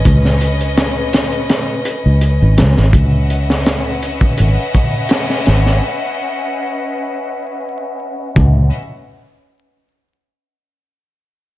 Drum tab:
HH |x-xxx-xxx-x-x-x-|x-x-x-x-x-x-x-x-|----------------|----------------|
SD |-o--o-o-o-----oo|---oo-------oooo|----------------|----------------|
BD |o---------------|o------o--o-----|--------------o-|----------------|